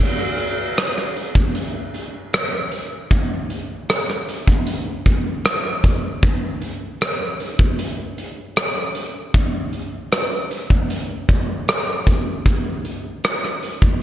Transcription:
0.38 closed hi-hat soft
0.77 cross-stick medium
0.77 closed hi-hat medium
0.98 cross-stick soft
1.16 closed hi-hat soft
1.35 kick medium
1.55 closed hi-hat medium
1.94 closed hi-hat medium
2.33 cross-stick medium
2.33 closed hi-hat medium
2.72 closed hi-hat medium
3.11 kick medium
3.11 closed hi-hat medium
3.50 closed hi-hat soft
3.89 cross-stick medium
3.89 closed hi-hat medium
4.10 cross-stick soft
4.29 closed hi-hat medium
4.47 kick medium
4.67 closed hi-hat medium
5.06 kick medium
5.06 closed hi-hat medium
5.45 cross-stick medium
5.45 closed hi-hat medium
5.84 kick medium
5.84 closed hi-hat medium
6.23 kick medium
6.23 closed hi-hat medium
6.62 closed hi-hat soft
7.01 cross-stick medium
7.01 closed hi-hat medium
7.40 closed hi-hat medium
7.59 kick medium
7.79 closed hi-hat medium
8.18 closed hi-hat medium
8.56 cross-stick medium
8.56 closed hi-hat medium
8.95 closed hi-hat medium
9.34 kick medium
9.34 closed hi-hat medium
9.73 closed hi-hat soft
10.12 cross-stick medium
10.12 closed hi-hat medium
10.51 closed hi-hat medium
10.70 kick medium
10.90 closed hi-hat medium
11.29 kick medium
11.29 closed hi-hat medium
11.68 cross-stick medium
11.68 closed hi-hat medium
12.07 kick medium
12.07 closed hi-hat medium
12.46 kick medium
12.46 closed hi-hat medium
12.85 closed hi-hat soft
13.24 cross-stick medium
13.24 closed hi-hat medium
13.44 cross-stick soft
13.63 closed hi-hat medium
13.82 kick medium

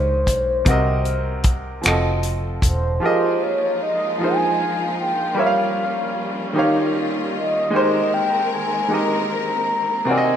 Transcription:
0.00 0.28 C#2 medium
0.00 0.68 G#3 medium
0.00 0.68 D#4 medium
0.00 0.68 G4 medium
0.00 0.68 A#4 medium
0.00 0.68 C5 medium
0.00 2.20 C5 loud
0.00 0.68 C#5 medium
0.00 0.62 D#5 medium
0.27 0.63 B1 medium
0.27 kick medium
0.27 closed hi-hat medium
0.65 1.80 C2 medium
0.65 1.74 C3 medium
0.65 1.74 C4 medium
0.65 1.75 F#4 medium
0.65 kick loud
0.65 closed hi-hat medium
0.69 1.76 A#4 medium
0.69 1.76 D#5 medium
1.05 closed hi-hat soft
1.44 kick medium
1.44 closed hi-hat medium
1.82 2.91 F3 medium
1.82 2.92 C4 medium
1.82 2.92 F#4 medium
1.82 closed hi-hat medium
1.86 2.59 F1 loud
1.86 2.93 A4 medium
1.86 2.94 D#5 medium
1.86 finger snap loud
2.23 closed hi-hat medium
2.62 2.98 E1 medium
2.62 3.00 C5 medium
2.62 kick medium
2.62 closed hi-hat medium
3.00 4.09 F3 medium
3.00 6.51 F3 medium
3.00 5.34 G#3 medium
3.00 10.37 A#3 medium
3.00 5.34 D#4 medium
3.00 4.10 F4 medium
3.00 6.51 F4 medium
3.00 4.10 G4 medium
3.00 4.11 G#4 medium
3.00 3.45 C5 medium
3.04 4.11 A#4 medium
3.04 4.12 D#5 medium
3.43 3.81 C#5 loud
3.82 4.18 D#5 loud
4.18 5.27 F3 medium
4.18 5.28 D#4 medium
4.18 5.27 F4 medium
4.18 5.28 G#4 medium
4.18 4.95 G#5 loud
4.23 5.29 A#4 medium
4.23 5.30 C5 medium
5.00 5.40 G5 loud
5.35 6.44 G3 medium
5.35 7.70 G3 medium
5.35 7.70 C#4 medium
5.35 6.44 G4 medium
5.35 6.45 A#4 medium
5.39 6.46 C#5 medium
5.39 5.45 E5 medium
5.39 6.95 F5 loud
5.47 6.50 F5 medium
6.53 7.62 D#3 medium
6.53 10.04 D#3 medium
6.53 7.63 D#4 medium
6.53 7.71 F4 medium
6.53 7.63 G4 medium
6.57 7.64 C#5 medium
6.57 7.65 F5 medium
7.36 8.15 D#5 loud
7.70 8.79 G#3 medium
7.70 10.05 G#3 medium
7.70 10.37 C4 medium
7.70 8.80 D#4 medium
7.70 8.81 G4 medium
7.70 10.05 A#4 medium
7.75 8.82 A#4 medium
7.75 8.82 C5 medium
8.14 8.55 G5 loud
8.54 8.95 G#5 loud
8.88 9.97 G#3 medium
8.88 9.98 D#4 medium
8.88 9.98 G4 medium
8.88 9.99 A#4 medium
8.93 10.00 D#5 medium
8.93 10.12 A#5 loud
10.05 10.37 C3 medium
10.05 10.37 D#3 medium
10.05 10.37 C4 medium
10.05 10.37 F#4 medium
10.10 10.37 A#4 medium
10.10 10.16 D5 medium
10.10 10.37 G#5 loud
10.18 10.37 D#5 medium

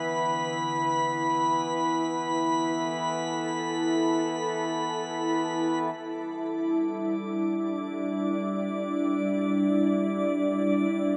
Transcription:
0.00 1.20 D3 medium
0.00 5.90 E3 medium
0.00 5.90 B3 medium
0.00 11.17 E4 medium
0.00 2.34 B4 medium
0.00 5.83 B5 medium
2.28 7.38 A4 medium
5.81 11.17 G3 medium
5.81 11.17 D6 medium
6.09 11.17 D4 medium
6.37 11.17 D5 medium

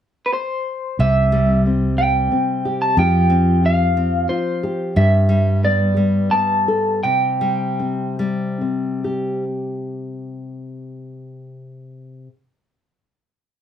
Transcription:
0.26 0.33 B4 soft
0.33 1.00 C5 medium
0.99 2.28 C2 medium
0.99 2.98 C3 medium
0.99 1.62 E5 medium
1.32 1.98 G3 medium
1.66 2.30 C4 medium
1.98 2.97 G3 soft
1.98 2.81 G5 medium
2.32 2.94 C4 medium
2.65 2.99 G4 medium
2.82 2.97 A5 medium
2.97 4.26 F2 medium
2.97 4.96 F3 medium
2.97 3.29 C4 medium
2.97 3.62 F4 medium
2.97 4.63 G4 medium
2.97 3.65 G5 medium
3.30 3.96 C4 medium
3.63 4.29 F4 medium
3.63 4.27 F5 medium
3.97 4.92 C4 medium
4.29 4.92 F4 soft
4.29 4.96 C5 medium
4.63 6.68 G4 medium
4.96 6.28 G2 medium
4.96 7.03 G2 medium
4.96 5.59 E5 medium
5.29 5.96 G3 medium
5.64 6.31 B3 medium
5.64 6.34 D5 medium
5.97 7.41 G3 medium
6.31 6.99 B3 medium
6.31 7.03 A5 medium
6.68 6.99 A4 medium
7.03 12.27 C3 medium
7.03 8.99 G5 medium
7.41 8.18 G3 medium
7.79 8.60 C4 medium
8.19 9.43 G3 medium
8.61 9.43 C4 soft
9.04 12.27 G4 medium

